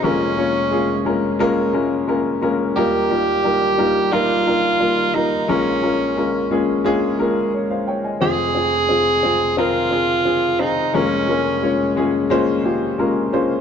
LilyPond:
<<
  \new Staff \with { instrumentName = "Tenor saxophone" } { \time 4/4 \key bes \dorian \tempo 4 = 88 des'4. r2 r8 | g'2 f'4. ees'8 | des'4. r2 r8 | aes'2 f'4. ees'8 |
des'4. r2 r8 | }
  \new Staff \with { instrumentName = "Grand piano" } { \time 4/4 \key bes \dorian << { r1 | r1 | r2. <aes' des''>16 <c'' f''>16 <des'' g''>16 <ees'' aes''>16~ | <ees'' aes''>16 r2. r8. |
r1 | } \\ { <aes bes des' f' bes'>8 <aes bes des' f' des''>8 <aes bes des' f' aes'>8 <aes bes des' f' bes'>8 <aes bes des' f' bes'>8 <aes bes des' f' bes'>8 <aes bes des' f' bes'>8 <aes bes des' f' bes'>8 | <g bes ees' f' bes'>8 <g bes ees' f' bes'>8 <g bes ees' f' bes'>8 <g bes ees' f' bes'>8 <g bes ees' f' bes'>8 <g bes ees' f' bes'>8 <g bes ees' f' bes'>8 <g bes ees' f' bes'>8 | <aes bes des' f' bes'>8 <aes bes des' f' bes'>8 <aes bes des' f' bes'>8 <aes bes des' f' aes'>8 <aes bes des' f' aes'>8 <aes bes des' f' bes'>8 r4 | <c' f' aes'>8 <c' f' aes'>8 <c' f' aes'>8 <c' f' aes'>8 <c' f' bes'>8 <c' f' aes'>8 <c' f' aes'>8 <c' f' aes'>8 |
<aes bes des' f' bes'>8 <aes bes des' f' bes'>8 <aes bes des' f' des''>8 <aes bes des' f' aes'>8 <aes bes des' f' c''>8 <aes bes des' f' g'>8 <aes bes des' f' bes'>8 <aes bes des' f' c''>8 | } >> }
  \new Staff \with { instrumentName = "Grand piano" } { \clef bass \time 4/4 \key bes \dorian <f,, f,>1 | <ees, ees>1 | <bes,, bes,>1 | <f,, f,>1 |
<f,, f,>1 | }
>>